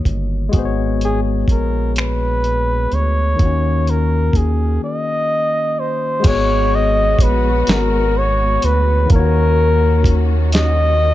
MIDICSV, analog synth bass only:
0, 0, Header, 1, 2, 480
1, 0, Start_track
1, 0, Key_signature, 5, "minor"
1, 0, Tempo, 952381
1, 268, Time_signature, 6, 3, 24, 8
1, 5616, End_track
2, 0, Start_track
2, 0, Title_t, "Analog synth bass"
2, 0, Program_c, 0, 38
2, 30, Note_on_c, 0, 31, 91
2, 249, Note_off_c, 0, 31, 0
2, 272, Note_on_c, 0, 32, 104
2, 730, Note_off_c, 0, 32, 0
2, 747, Note_on_c, 0, 34, 71
2, 1448, Note_off_c, 0, 34, 0
2, 1474, Note_on_c, 0, 38, 92
2, 1691, Note_off_c, 0, 38, 0
2, 1713, Note_on_c, 0, 39, 85
2, 2170, Note_off_c, 0, 39, 0
2, 2186, Note_on_c, 0, 39, 85
2, 2415, Note_off_c, 0, 39, 0
2, 3150, Note_on_c, 0, 32, 99
2, 3609, Note_off_c, 0, 32, 0
2, 3626, Note_on_c, 0, 34, 84
2, 3847, Note_off_c, 0, 34, 0
2, 3871, Note_on_c, 0, 32, 92
2, 4330, Note_off_c, 0, 32, 0
2, 4354, Note_on_c, 0, 38, 94
2, 4571, Note_off_c, 0, 38, 0
2, 4589, Note_on_c, 0, 39, 104
2, 5616, Note_off_c, 0, 39, 0
2, 5616, End_track
0, 0, End_of_file